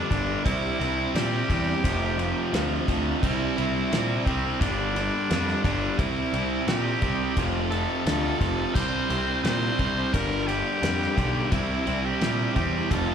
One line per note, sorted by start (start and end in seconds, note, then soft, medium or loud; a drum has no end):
0.00 0.44 G3 medium
0.00 0.44 A#3 medium
0.00 0.44 D4 medium
0.00 0.44 G4 medium
0.09 0.35 G1 medium
0.09 0.43 G2 medium
0.09 0.43 D3 medium
0.09 0.43 G3 medium
0.09 0.42 D4 loud
0.09 kick medium
0.09 ride medium
0.44 0.70 C2 medium
0.44 0.77 C3 medium
0.44 0.78 G3 medium
0.44 1.82 G3 medium
0.44 0.79 C4 loud
0.44 1.82 C4 medium
0.44 1.83 D4 medium
0.44 1.11 E4 loud
0.44 1.83 E4 medium
0.44 kick loud
0.44 ride loud
0.79 1.04 C2 medium
0.79 1.13 C3 medium
0.79 1.13 G3 medium
0.79 1.14 C4 medium
0.79 ride medium
1.14 1.39 A#2 medium
1.14 1.47 C3 medium
1.14 1.48 G3 medium
1.14 1.48 C4 medium
1.14 2.84 G4 loud
1.14 snare loud
1.14 ride medium
1.48 1.73 E2 medium
1.48 1.81 C3 medium
1.48 1.82 G3 medium
1.48 1.82 C4 medium
1.48 kick medium
1.48 ride medium
1.83 2.32 F1 medium
1.83 2.16 F2 loud
1.83 2.17 C3 loud
1.83 2.17 F3 loud
1.83 3.21 F3 medium
1.83 3.21 A3 medium
1.83 3.22 C4 medium
1.83 3.21 F4 medium
1.83 kick medium
1.83 ride loud
2.17 2.52 F2 medium
2.17 2.52 C3 medium
2.17 2.53 F3 medium
2.17 ride medium
2.53 2.77 D2 medium
2.53 2.87 F2 medium
2.53 2.87 C3 medium
2.53 2.88 F3 loud
2.53 snare loud
2.53 ride loud
2.88 3.12 D2 medium
2.88 3.20 F2 medium
2.88 3.21 C3 medium
2.88 3.21 F3 medium
2.88 kick medium
2.88 ride medium
3.21 3.47 C2 loud
3.21 3.56 C3 loud
3.21 3.57 G3 loud
3.21 4.59 G3 medium
3.21 3.57 C4 loud
3.21 4.60 C4 medium
3.21 4.58 D4 medium
3.21 4.22 E4 medium
3.21 4.60 E4 medium
3.21 kick loud
3.21 crash loud
3.57 3.82 C2 medium
3.57 3.90 C3 medium
3.57 3.91 G3 medium
3.57 3.91 C4 loud
3.57 ride medium
3.92 4.16 A#2 medium
3.92 4.26 C3 medium
3.92 4.26 G3 medium
3.92 4.27 C4 medium
3.92 snare loud
3.92 ride loud
4.25 4.50 C2 loud
4.25 4.59 C3 medium
4.25 4.59 G3 medium
4.25 4.61 C4 medium
4.25 4.59 C4 medium
4.25 kick medium
4.25 ride medium
4.60 5.09 G1 medium
4.60 4.94 G2 medium
4.60 4.94 D3 loud
4.60 5.97 G3 medium
4.60 4.95 G3 loud
4.60 5.97 A#3 medium
4.60 5.97 D4 medium
4.60 5.64 D4 loud
4.60 5.97 G4 medium
4.60 kick medium
4.60 ride loud
4.95 5.29 G2 medium
4.95 5.29 D3 medium
4.95 5.30 G3 medium
4.95 ride medium
5.30 5.54 F2 medium
5.30 5.63 G2 medium
5.30 5.63 D3 medium
5.30 5.64 G3 medium
5.30 snare loud
5.30 ride loud
5.49 snare soft
5.64 5.88 G1 loud
5.64 5.97 G2 medium
5.64 5.97 D3 medium
5.64 5.97 G3 medium
5.64 6.00 D4 medium
5.64 kick medium
5.64 ride medium
5.98 6.23 C2 medium
5.98 6.32 C3 loud
5.98 6.33 G3 loud
5.98 7.36 G3 medium
5.98 6.33 C4 loud
5.98 7.36 C4 medium
5.98 7.36 D4 medium
5.98 6.67 E4 medium
5.98 7.37 E4 medium
5.98 kick loud
5.98 ride medium
6.33 6.57 C2 medium
6.33 6.67 C3 medium
6.33 6.67 G3 medium
6.33 6.68 C4 medium
6.33 ride medium
6.67 6.91 A#2 medium
6.67 7.01 C3 medium
6.67 7.01 G3 medium
6.67 7.01 C4 medium
6.67 7.41 G4 loud
6.67 snare loud
6.67 ride medium
7.02 7.27 C2 medium
7.02 7.35 C3 medium
7.02 7.35 G3 medium
7.02 7.35 C4 medium
7.02 kick medium
7.02 ride medium
7.34 7.85 F1 medium
7.34 7.71 F2 medium
7.34 7.71 C3 medium
7.34 7.71 F3 loud
7.34 7.59 F#3 medium
7.34 7.60 A#3 medium
7.34 7.59 C#4 medium
7.34 7.59 F#4 medium
7.34 kick medium
7.34 ride loud
7.59 8.74 F3 medium
7.59 8.74 A3 medium
7.59 8.73 C4 medium
7.59 8.75 F4 medium
7.71 8.05 F2 medium
7.71 8.06 C3 medium
7.71 8.06 F3 medium
7.71 8.03 A4 medium
7.71 ride medium
8.06 8.30 D2 medium
8.06 8.39 F2 medium
8.06 8.39 C3 medium
8.06 8.40 F3 medium
8.06 8.76 A4 loud
8.06 snare loud
8.06 ride loud
8.40 8.65 F1 medium
8.40 8.73 F2 medium
8.40 8.73 C3 medium
8.40 8.74 F3 medium
8.40 kick medium
8.40 ride medium
8.74 8.99 C2 medium
8.74 9.08 C3 medium
8.74 10.12 G3 medium
8.74 9.09 G3 loud
8.74 10.12 C4 medium
8.74 9.09 C4 loud
8.74 10.12 D4 medium
8.74 10.12 E4 medium
8.74 9.43 C5 loud
8.74 kick loud
8.74 crash loud
9.09 9.34 C2 medium
9.09 9.43 C3 medium
9.09 9.43 G3 medium
9.09 9.44 C4 loud
9.09 ride medium
9.44 9.68 A#2 medium
9.44 9.78 C3 medium
9.44 9.78 G3 medium
9.44 9.78 C4 medium
9.44 10.15 C5 loud
9.44 snare loud
9.44 ride loud
9.79 10.03 C2 medium
9.79 10.12 C3 medium
9.79 10.12 G3 medium
9.79 10.12 C4 loud
9.79 kick medium
9.79 ride medium
10.12 10.62 G1 medium
10.12 10.46 G2 medium
10.12 10.47 D3 loud
10.12 10.47 G3 loud
10.12 11.52 G3 medium
10.12 11.51 A#3 medium
10.12 11.52 D4 medium
10.12 11.52 G4 medium
10.12 10.49 A#4 loud
10.12 kick medium
10.12 ride loud
10.47 10.81 G2 medium
10.47 10.81 D3 medium
10.47 10.81 G3 medium
10.47 11.54 G4 loud
10.47 ride medium
10.82 11.07 F2 medium
10.82 11.15 G2 medium
10.82 11.15 D3 medium
10.82 11.16 G3 medium
10.82 snare loud
10.82 ride loud
11.02 snare soft
11.16 11.42 B1 medium
11.16 11.50 G2 medium
11.16 11.50 D3 medium
11.16 11.50 G3 medium
11.16 kick medium
11.16 ride medium
11.51 11.76 C2 medium
11.51 11.85 C3 loud
11.51 11.85 G3 medium
11.51 12.91 G3 medium
11.51 11.86 C4 loud
11.51 12.91 C4 medium
11.51 12.91 D4 medium
11.51 12.07 E4 medium
11.51 12.90 E4 medium
11.51 kick loud
11.51 ride loud
11.86 12.11 C2 medium
11.86 12.20 C3 medium
11.86 12.20 G3 medium
11.86 12.21 C4 medium
11.86 ride medium
12.06 12.55 G4 medium
12.21 12.46 A#2 loud
12.21 12.54 C3 medium
12.21 12.55 G3 medium
12.21 12.55 C4 medium
12.21 snare loud
12.21 ride loud
12.55 12.80 E2 medium
12.55 12.88 C3 medium
12.55 12.89 G3 medium
12.55 12.89 C4 medium
12.55 12.93 G4 medium
12.55 kick medium
12.55 ride medium
12.90 13.14 F1 medium
12.90 13.14 F2 medium
12.90 13.14 C3 loud
12.90 13.14 F3 loud
12.90 13.14 F4 medium
12.90 13.14 A4 medium
12.90 kick medium
12.90 ride loud
12.94 13.14 F3 medium
12.94 13.14 A3 medium
12.94 13.14 C4 medium